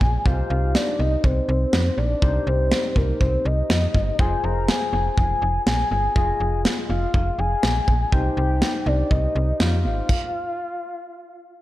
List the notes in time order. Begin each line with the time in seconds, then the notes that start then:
Already playing: F4 G#4 D5 G#5
0.01 A#1, kick
0.26 C2 D#4 G4 C5 F5, kick
0.50 C2 F5
0.75 D5, snare
0.99 C2 D#5
1.24 C2 C5, kick
1.49 C2
1.73 F2, snare
1.98 A#1 D5
2.22 C2 D#4 G4 C5, kick
2.47 C2 C5
2.72 snare
2.96 C2 A#4, kick
3.21 C2 C5, kick
3.45 C2 D#5
3.70 F2, snare
3.94 G1, kick
4.19 F1 F4 G#4 C5 G#5, kick
4.44 F1 A#5
4.68 G#5, snare
4.93 F1
5.17 F1 G#5, kick
5.42 F1
5.66 A#1 G#5, snare
5.91 G1 G#5
6.16 F1 F4 G#4 D#5 G#5, kick
6.40 F1
6.65 snare
6.90 F1 F5
7.14 F1, kick
7.39 F1 G#5
7.63 A#1, snare
7.88 A#1, kick
8.12 C2 D#4 G4 C5 G5, kick
8.37 C2 G5
8.62 snare
8.86 C2 D5
9.11 C2 D#5, kick
9.35 C2
9.60 F2 D#4 G4 C5 F5, snare
9.84 G#1 F5
10.09 kick, crash